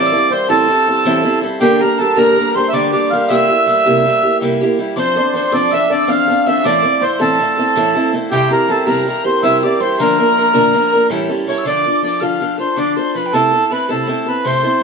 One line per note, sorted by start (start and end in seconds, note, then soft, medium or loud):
0.00 0.12 A2 medium
0.00 0.12 E3 medium
0.00 0.13 G3 medium
0.00 0.12 C4 medium
0.00 0.11 E4 medium
0.00 0.11 A4 loud
0.00 0.55 A#4 medium
0.00 0.31 C5 medium
0.00 0.32 D5 loud
0.00 2.39 D5 medium
0.00 2.04 E5 medium
0.06 0.21 E6 medium
0.12 0.29 G3 soft
0.12 0.30 C4 soft
0.12 0.31 E4 medium
0.12 0.31 A4 medium
0.19 0.31 D6 medium
0.30 0.49 G3 medium
0.30 0.48 C4 medium
0.30 0.48 E4 medium
0.30 0.48 A4 medium
0.30 0.48 C5 loud
0.30 2.55 C5 medium
0.30 0.51 C6 loud
0.49 0.69 A2 medium
0.49 0.70 E3 medium
0.49 0.66 G3 medium
0.49 0.67 C4 medium
0.49 0.68 E4 medium
0.49 0.69 A4 medium
0.49 1.87 A4 medium
0.49 1.39 A4 loud
0.49 1.44 A5 medium
0.68 0.86 G3 medium
0.68 0.87 C4 medium
0.68 0.86 E4 medium
0.68 0.85 A4 medium
0.86 1.04 G3 soft
0.86 1.05 C4 soft
0.86 1.05 E4 soft
0.86 1.05 A4 soft
1.05 1.25 A2 medium
1.05 1.25 E3 loud
1.05 1.25 G3 medium
1.05 1.24 C4 loud
1.05 1.23 E4 medium
1.05 1.22 A4 loud
1.23 1.40 G3 soft
1.23 1.42 C4 medium
1.23 1.42 E4 medium
1.23 1.42 A4 medium
1.41 1.60 G3 medium
1.41 1.60 C4 medium
1.41 1.61 E4 medium
1.41 1.61 A4 medium
1.60 1.81 G2 medium
1.60 1.81 D3 medium
1.60 1.81 G3 medium
1.60 1.80 A#3 loud
1.60 1.80 D4 loud
1.60 1.81 G4 loud
1.60 4.75 G4 medium
1.60 1.79 G4 medium
1.60 1.66 A5 medium
1.65 1.83 G5 medium
1.80 1.97 G3 soft
1.80 1.98 A#3 medium
1.80 1.99 D4 soft
1.80 1.99 G4 medium
1.80 2.00 A#4 medium
1.80 2.05 A#4 medium
1.80 2.00 A#5 medium
1.98 2.17 G3 medium
1.98 2.16 A#3 medium
1.98 2.16 D4 medium
1.98 2.15 G4 medium
1.98 2.18 A4 medium
1.98 2.23 A4 medium
1.98 2.16 A5 medium
2.16 2.37 G2 medium
2.16 2.37 D3 medium
2.16 2.35 G3 medium
2.16 2.36 A#3 medium
2.16 2.37 D4 medium
2.16 2.36 G4 medium
2.16 5.00 A#4 medium
2.16 2.49 A#4 medium
2.16 2.57 A#5 medium
2.36 2.55 G3 medium
2.36 2.55 A#3 medium
2.36 2.55 D4 medium
2.36 2.53 G4 medium
2.51 2.73 G4 medium
2.51 2.55 A#4 medium
2.55 2.72 G3 soft
2.55 2.72 A#3 soft
2.55 2.73 D4 soft
2.55 4.96 C5 medium
2.55 2.70 C5 medium
2.55 2.75 C6 medium
2.69 2.92 G2 medium
2.69 2.73 E5 medium
2.73 2.93 D3 medium
2.73 2.93 G3 medium
2.73 2.93 A#3 medium
2.73 2.92 D4 medium
2.73 2.91 G4 medium
2.73 2.91 D5 loud
2.73 2.93 D5 medium
2.73 2.92 D6 medium
2.92 3.11 G3 soft
2.92 3.11 A#3 medium
2.92 3.11 D4 medium
2.92 3.11 G4 medium
2.92 3.11 D5 medium
2.92 5.16 D5 medium
2.92 3.12 D6 medium
3.10 3.28 G3 medium
3.10 3.29 A#3 medium
3.10 3.30 D4 medium
3.10 3.30 F5 medium
3.10 3.36 F5 medium
3.10 3.30 F6 medium
3.14 3.30 G4 medium
3.29 3.49 C3 medium
3.29 3.49 G3 medium
3.29 3.49 A#3 medium
3.29 3.49 E4 medium
3.29 3.47 G4 medium
3.29 4.37 E5 loud
3.29 5.60 E5 medium
3.29 4.41 E6 medium
3.49 3.66 A#3 soft
3.49 3.67 E4 soft
3.49 3.67 G4 medium
3.67 3.85 G3 medium
3.67 3.85 A#3 medium
3.67 3.85 E4 medium
3.67 3.85 G4 medium
3.86 4.06 C3 medium
3.86 4.03 G3 medium
3.86 4.04 A#3 medium
3.86 4.05 E4 medium
3.86 4.05 G4 medium
4.05 4.23 G3 medium
4.05 4.23 A#3 medium
4.05 4.23 E4 medium
4.05 4.21 G4 medium
4.23 4.41 A#3 soft
4.23 4.41 E4 soft
4.23 4.41 G4 soft
4.41 4.61 C3 medium
4.41 4.61 G3 medium
4.41 4.61 A#3 medium
4.41 4.61 E4 loud
4.41 4.60 G4 medium
4.61 4.78 A#3 medium
4.61 4.78 E4 medium
4.61 4.79 G4 medium
4.78 4.96 G3 medium
4.78 4.97 A#3 medium
4.78 4.97 E4 medium
4.78 4.98 G4 medium
4.96 5.16 F3 medium
4.96 5.17 C4 medium
4.96 5.16 D4 loud
4.96 5.15 A4 medium
4.96 5.33 C5 medium
4.96 5.34 C5 loud
4.96 5.32 C6 medium
4.96 5.00 D6 medium
5.16 5.34 C4 soft
5.16 5.34 D4 soft
5.16 5.34 A4 medium
5.16 5.52 D5 medium
5.34 5.52 F3 medium
5.34 5.52 C4 medium
5.34 5.51 D4 medium
5.34 5.51 A4 medium
5.34 7.01 C5 medium
5.34 5.54 C5 medium
5.34 5.54 C6 medium
5.52 5.70 F3 medium
5.52 5.71 C4 medium
5.52 5.72 D4 medium
5.52 5.72 A4 medium
5.52 5.90 D5 medium
5.52 5.74 D5 loud
5.52 5.58 E6 medium
5.57 5.72 D6 medium
5.71 5.90 F3 medium
5.71 5.90 C4 medium
5.71 5.90 D4 medium
5.71 5.88 A4 medium
5.71 6.14 E5 loud
5.71 5.91 E5 loud
5.71 6.08 E6 medium
5.90 6.07 C4 soft
5.90 6.07 D4 medium
5.90 6.08 A4 soft
5.90 6.64 D5 medium
5.90 6.10 D5 loud
6.07 6.27 F3 medium
6.07 6.28 C4 medium
6.07 6.28 D4 medium
6.07 6.26 A4 medium
6.07 6.53 F5 medium
6.07 6.48 F5 loud
6.07 6.48 F6 medium
6.28 6.46 C4 soft
6.28 6.47 D4 medium
6.28 6.46 A4 medium
6.46 6.64 F3 medium
6.46 6.65 C4 medium
6.46 6.65 D4 medium
6.46 6.65 A4 medium
6.46 8.76 E5 medium
6.46 6.66 E5 medium
6.46 6.67 E6 medium
6.64 6.84 A2 loud
6.64 6.84 E3 medium
6.64 6.84 A3 medium
6.64 6.84 C4 medium
6.64 6.83 E4 medium
6.64 6.82 A4 medium
6.64 9.10 D5 medium
6.64 7.04 D5 loud
6.64 7.02 D6 medium
6.83 7.00 A3 medium
6.83 7.01 C4 soft
6.83 7.02 E4 medium
6.83 7.02 A4 medium
7.01 7.20 A3 medium
7.01 7.19 C4 medium
7.01 7.19 E4 medium
7.01 7.19 A4 medium
7.01 9.24 C5 medium
7.01 7.21 C5 loud
7.01 7.23 C6 medium
7.20 7.40 A2 medium
7.20 7.40 E3 medium
7.20 7.38 A3 medium
7.20 7.39 C4 medium
7.20 7.40 E4 medium
7.20 7.40 A4 medium
7.20 7.95 A4 medium
7.20 8.10 A4 loud
7.20 8.14 A5 medium
7.39 7.58 A3 medium
7.39 7.58 C4 medium
7.39 7.57 E4 medium
7.39 7.56 A4 medium
7.57 7.75 A3 soft
7.57 7.76 C4 medium
7.57 7.76 E4 soft
7.57 7.76 A4 medium
7.76 7.95 A2 medium
7.76 7.96 E3 medium
7.76 7.96 A3 medium
7.76 7.96 C4 medium
7.76 7.95 E4 loud
7.76 7.94 A4 loud
7.95 8.12 A3 medium
7.95 8.13 C4 medium
7.95 8.14 E4 medium
7.95 8.57 A4 medium
7.95 8.14 A4 medium
8.13 8.31 A3 medium
8.13 8.31 C4 medium
8.13 8.31 E4 medium
8.13 8.33 A4 medium
8.31 8.51 C3 medium
8.31 8.51 G3 medium
8.31 8.52 C4 medium
8.31 8.50 E4 loud
8.31 8.52 G4 loud
8.31 11.45 G4 medium
8.31 8.49 G4 medium
8.31 8.50 G5 medium
8.51 8.68 C4 soft
8.51 8.70 E4 medium
8.51 8.69 G4 medium
8.51 8.74 A#4 medium
8.51 8.70 A#4 medium
8.51 8.71 A#5 medium
8.68 8.86 G3 medium
8.68 8.86 C4 medium
8.68 8.86 E4 medium
8.68 8.85 G4 medium
8.68 8.93 A4 medium
8.68 8.88 A4 loud
8.68 8.88 A5 medium
8.86 9.07 C3 medium
8.86 9.05 G3 medium
8.86 9.05 C4 medium
8.86 9.06 E4 medium
8.86 9.06 G4 medium
8.86 9.98 A#4 medium
8.86 9.23 A#4 medium
8.86 9.06 A#5 medium
9.06 9.24 G3 medium
9.06 9.25 C4 medium
9.06 9.24 E4 medium
9.06 9.23 G4 medium
9.06 9.26 A#5 medium
9.24 9.42 C4 soft
9.24 9.43 E4 soft
9.24 9.43 G4 medium
9.24 9.80 C5 medium
9.24 9.44 C5 medium
9.24 9.43 C6 medium
9.42 9.62 C3 medium
9.42 9.63 G3 medium
9.42 9.63 C4 medium
9.42 9.63 E4 medium
9.42 9.61 G4 loud
9.42 11.73 E5 medium
9.42 9.64 E5 loud
9.42 9.65 E6 medium
9.62 9.80 C4 medium
9.62 9.81 E4 medium
9.62 9.81 G4 medium
9.62 9.81 D5 medium
9.62 9.83 D6 medium
9.80 9.99 G3 medium
9.80 9.99 C4 medium
9.80 10.00 E4 medium
9.80 10.00 G4 medium
9.80 12.44 C5 medium
9.80 10.00 C5 medium
9.80 9.99 C6 medium
9.98 10.18 A#2 medium
9.98 10.19 D3 medium
9.98 10.19 F3 loud
9.98 10.19 A#3 loud
9.98 10.19 D4 medium
9.98 12.81 A#4 medium
9.98 11.07 A#4 loud
9.98 10.17 A#4 medium
9.98 11.07 A#5 medium
10.19 10.35 F3 soft
10.19 10.36 A#3 medium
10.19 10.37 D4 medium
10.19 10.37 A#4 medium
10.37 10.53 F3 medium
10.37 10.53 A#3 medium
10.37 10.53 D4 medium
10.37 10.53 A#4 medium
10.54 10.75 A#2 medium
10.54 10.74 D3 medium
10.54 10.72 F3 medium
10.54 10.73 A#3 medium
10.54 10.74 D4 medium
10.54 10.74 A#4 medium
10.73 10.92 F3 medium
10.73 10.92 A#3 medium
10.73 10.92 D4 medium
10.73 10.91 A#4 medium
10.92 11.10 F3 soft
10.92 11.10 A#3 soft
10.92 11.11 D4 medium
10.92 11.10 A#4 medium
11.10 11.29 A2 medium
11.10 11.30 E3 medium
11.10 11.30 G3 loud
11.10 11.29 C#4 medium
11.10 11.28 E4 loud
11.10 11.27 A4 medium
11.29 11.45 G3 medium
11.29 11.46 C#4 medium
11.29 11.47 E4 medium
11.29 11.47 A4 medium
11.47 11.65 G3 medium
11.47 11.65 C#4 medium
11.47 11.66 E4 medium
11.47 11.66 A4 medium
11.47 11.65 C#5 medium
11.47 11.60 C#6 medium
11.58 11.65 E6 medium
11.65 11.85 D3 medium
11.65 11.85 F3 medium
11.65 11.85 D4 medium
11.65 11.85 F4 loud
11.65 11.84 A4 medium
11.65 12.03 D5 loud
11.65 11.71 E6 medium
11.70 12.03 D6 medium
11.85 12.02 D4 soft
11.85 12.03 F4 soft
11.85 12.03 A4 medium
12.02 12.21 F3 soft
12.02 12.21 D4 medium
12.02 12.21 F4 medium
12.02 12.20 A4 medium
12.02 12.22 D5 medium
12.02 12.22 D6 medium
12.20 12.42 D3 medium
12.20 12.39 F3 medium
12.20 12.40 D4 medium
12.20 12.41 F4 medium
12.20 12.41 A4 medium
12.20 12.57 F5 medium
12.20 12.59 F6 medium
12.40 12.59 F3 medium
12.40 12.59 D4 medium
12.40 12.58 F4 soft
12.40 12.57 A4 medium
12.58 12.76 D4 soft
12.58 12.77 F4 soft
12.58 12.77 A4 medium
12.58 12.78 C5 medium
12.58 12.78 C6 medium
12.77 12.96 D3 medium
12.77 12.97 F3 medium
12.77 12.97 D4 medium
12.77 12.96 F4 medium
12.77 12.95 A4 medium
12.77 12.96 D5 medium
12.77 12.95 D6 medium
12.96 13.15 D4 medium
12.96 13.15 F4 medium
12.96 13.15 A4 medium
12.96 13.16 C5 medium
12.96 13.13 C6 medium
13.15 13.33 F3 soft
13.15 13.34 D4 soft
13.15 13.34 F4 medium
13.15 13.34 A4 medium
13.15 13.33 B4 medium
13.15 13.28 B5 medium
13.26 13.35 G5 soft
13.33 13.52 C3 medium
13.33 13.53 A3 medium
13.33 13.53 C4 medium
13.33 13.53 E4 medium
13.33 13.72 A4 loud
13.33 13.51 A4 medium
13.33 13.73 A5 medium
13.53 13.70 C4 soft
13.53 13.70 E4 soft
13.53 13.71 A4 medium
13.70 13.88 A3 medium
13.70 13.89 C4 medium
13.70 13.88 E4 medium
13.70 13.88 A4 medium
13.70 13.90 B4 medium
13.70 13.89 B5 medium
13.89 14.09 C3 medium
13.89 14.05 A3 medium
13.89 14.06 C4 medium
13.89 14.07 E4 medium
13.89 14.08 A4 medium
13.89 14.28 A4 medium
13.89 14.01 A5 medium
14.02 14.11 B5 soft
14.07 14.25 A3 medium
14.07 14.26 C4 medium
14.07 14.26 E4 medium
14.07 14.25 A4 medium
14.07 14.43 A5 medium
14.26 14.45 C4 soft
14.26 14.45 E4 soft
14.26 14.44 A4 medium
14.26 14.46 B4 medium
14.44 14.64 C3 medium
14.44 14.64 A3 medium
14.44 14.64 C4 medium
14.44 14.63 E4 medium
14.44 14.62 A4 medium
14.44 14.82 C5 loud
14.44 14.79 C6 medium
14.63 14.81 C4 medium
14.63 14.82 E4 medium
14.63 14.82 A4 medium